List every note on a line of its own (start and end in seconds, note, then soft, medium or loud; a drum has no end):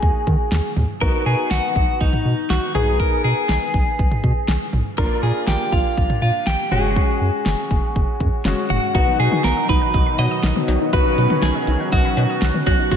0.00 0.11 D#2 loud
0.00 0.73 A#3 medium
0.00 0.73 D#4 medium
0.00 0.73 F#4 medium
0.00 0.73 G#4 medium
0.00 kick medium
0.27 0.36 D#3 loud
0.27 kick medium
0.52 0.61 D#2 loud
0.52 snare loud
0.76 0.86 D#2 loud
0.76 mid tom medium
1.01 1.10 B1 loud
1.01 2.71 B3 medium
1.01 2.71 D#4 medium
1.01 2.72 F#4 medium
1.01 1.26 A#4 loud
1.01 kick loud
1.26 1.35 B2 loud
1.26 1.51 G#4 medium
1.51 1.60 B1 loud
1.51 2.02 F#4 loud
1.51 snare loud
1.76 1.85 B1 loud
1.76 kick medium
2.01 2.10 B1 loud
2.01 2.52 D#4 medium
2.01 kick medium
2.13 mid tom medium
2.25 2.34 B2 loud
2.50 2.59 B1 loud
2.50 2.74 F#4 medium
2.50 snare loud
2.75 3.02 B1 medium
2.75 4.69 B3 medium
2.75 4.69 D#4 medium
2.75 2.99 G#4 medium
2.75 4.69 G#4 medium
2.75 mid tom medium
3.00 3.24 A#4 loud
3.00 kick loud
3.24 3.33 B2 loud
3.24 4.69 G#4 medium
3.49 3.58 B1 loud
3.49 snare loud
3.74 3.83 B1 loud
3.74 kick medium
3.99 4.08 B1 loud
3.99 kick medium
4.11 mid tom medium
4.24 4.33 B2 loud
4.24 kick medium
4.48 4.57 B1 loud
4.48 snare loud
4.73 4.82 B1 loud
4.73 mid tom medium
4.98 5.07 A#1 loud
4.98 6.68 A#3 medium
4.98 6.68 D4 medium
4.98 6.68 F4 medium
4.98 5.23 A#4 loud
4.98 kick loud
5.23 5.32 A#2 loud
5.23 5.46 G#4 loud
5.47 5.57 A#1 loud
5.47 5.73 G4 loud
5.47 snare loud
5.72 5.81 A#1 loud
5.72 6.21 F4 medium
5.72 kick medium
5.97 6.06 A#1 loud
5.97 kick medium
6.10 mid tom medium
6.22 6.31 A#2 loud
6.22 6.48 F4 medium
6.47 6.56 A#1 loud
6.47 6.70 G4 medium
6.47 snare loud
6.71 6.98 F#1 loud
6.71 8.42 G#3 medium
6.71 8.42 C#4 medium
6.71 8.42 F#4 medium
6.71 8.41 G#4 medium
6.71 mid tom loud
6.96 kick loud
7.21 7.30 F#2 loud
7.46 7.55 F#1 medium
7.46 snare loud
7.71 7.80 F#1 loud
7.71 kick medium
7.96 8.05 F#1 loud
7.96 kick medium
8.20 8.29 F#2 loud
8.20 kick medium
8.45 8.54 F#1 loud
8.45 8.95 G#3 medium
8.45 8.95 C#4 medium
8.45 8.93 F#4 medium
8.45 snare loud
8.70 8.79 F#1 medium
8.70 8.94 F#4 medium
8.70 mid tom loud
8.95 9.04 B1 loud
8.95 12.88 B2 medium
8.95 9.03 D#3 medium
8.95 12.87 D#3 medium
8.95 12.87 F#3 medium
8.95 10.89 B3 medium
8.95 10.91 D#4 medium
8.95 10.89 D#4 medium
8.95 10.89 F#4 medium
8.95 12.96 F#4 medium
8.95 9.19 F#4 loud
8.95 kick loud
8.95 closed hi-hat medium
9.07 9.15 B3 medium
9.20 9.28 B2 loud
9.20 9.27 F#3 medium
9.20 9.44 G#4 medium
9.20 closed hi-hat medium
9.32 9.40 D#4 medium
9.32 mid tom loud
9.44 9.53 B1 loud
9.44 9.52 B3 medium
9.44 9.69 A#4 loud
9.44 snare loud
9.44 closed hi-hat medium
9.57 9.65 D#5 medium
9.69 9.78 B1 loud
9.69 9.77 D#4 medium
9.69 10.18 B4 loud
9.69 kick loud
9.69 closed hi-hat medium
9.82 9.89 F#5 medium
9.94 10.03 B1 loud
9.94 10.02 D#5 loud
9.94 kick loud
9.94 closed hi-hat medium
10.06 10.14 B5 medium
10.19 10.28 B2 loud
10.19 10.93 D#5 loud
10.19 10.26 F#5 medium
10.19 closed hi-hat medium
10.19 cowbell medium
10.31 10.39 D#6 medium
10.43 10.52 B1 loud
10.43 10.51 D#3 medium
10.43 snare loud
10.43 closed hi-hat medium
10.56 10.64 B3 medium
10.56 mid tom medium
10.68 10.77 B1 loud
10.68 10.76 F#3 medium
10.68 closed hi-hat medium
10.68 cowbell medium
10.81 10.88 D#4 medium
10.93 11.02 B1 loud
10.93 11.01 D#3 medium
10.93 12.87 B3 medium
10.93 12.89 C#4 medium
10.93 12.87 D#4 medium
10.93 12.87 F#4 medium
10.93 11.44 B4 loud
10.93 kick loud
10.93 closed hi-hat medium
11.05 11.13 B3 medium
11.18 11.27 B2 loud
11.18 11.26 F#3 medium
11.18 closed hi-hat medium
11.30 11.38 D#4 medium
11.30 mid tom loud
11.42 11.52 B1 loud
11.42 11.50 B3 medium
11.42 11.92 G#4 loud
11.42 snare loud
11.42 closed hi-hat medium
11.55 11.63 D#5 medium
11.67 11.76 B1 loud
11.67 11.75 D#4 medium
11.67 closed hi-hat medium
11.80 11.88 F#5 medium
11.92 12.01 B1 loud
11.92 12.66 F#4 loud
11.92 12.00 D#5 loud
11.92 kick loud
11.92 closed hi-hat medium
12.05 12.13 B5 medium
12.17 12.26 B2 loud
12.17 12.25 F#5 medium
12.17 closed hi-hat medium
12.17 cowbell medium
12.30 12.37 D#6 medium
12.42 12.51 B1 loud
12.42 12.50 D#3 medium
12.42 snare loud
12.42 closed hi-hat medium
12.54 12.62 B3 medium
12.54 mid tom medium
12.66 12.76 B1 loud
12.66 12.75 F#3 medium
12.66 12.90 F#4 medium
12.66 kick medium
12.66 closed hi-hat medium
12.66 cowbell medium
12.79 12.87 D#4 medium
12.91 12.96 F#1 loud
12.91 12.96 A#2 medium
12.91 12.96 C#3 medium
12.91 12.96 F#3 medium
12.91 12.96 G#3 medium
12.91 12.96 C#4 medium
12.91 12.96 F#4 medium
12.91 12.96 F#4 loud
12.91 kick loud
12.91 closed hi-hat medium